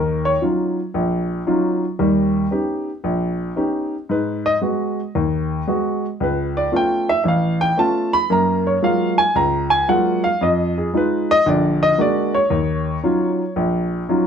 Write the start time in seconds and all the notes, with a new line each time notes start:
Already playing: D#2 D#3 A#4
0.25 C#5
0.41 F#3 C#4 D#4 F4
0.94 A#1
1.47 F#3 C#4 D#4 F4
1.99 D#2 G3
2.51 B3 C#4 D#4 G4
3.04 A#1
3.56 B3 C#4 D#4 G4
4.09 G#2 B4
4.46 D#5
4.61 G#3 B3 F#4
5.15 D#2
5.68 G#3 B3 F#4
6.20 C#2 B4
6.57 D5
6.72 A3 B3 C#4 F4
6.76 G5
7.09 E5
7.24 A1 E5
7.28 F5
7.61 G5
7.77 A3 B3 C#4 F4 A5
8.13 B5
8.30 F#2 A#3 A#5
8.67 C#5
8.82 F#3 G#3 A#3 F4 F5
9.18 G#5
9.35 C#2 A#5
9.70 G#5
9.88 F#3 G#3 A#3 F4 F#5
10.24 F5
10.41 F2 D#5
10.78 G#4
10.94 G#3 D#4 F4 B4
11.31 D#5
11.46 A#1 D3 D5
11.83 D#5
11.98 G#3 A#3 D4 F#4 D5
12.34 C#5
12.50 D#2
13.03 F#3 C#4 D#4 F4
13.56 A#1
14.09 F#3 C#4 D#4 F4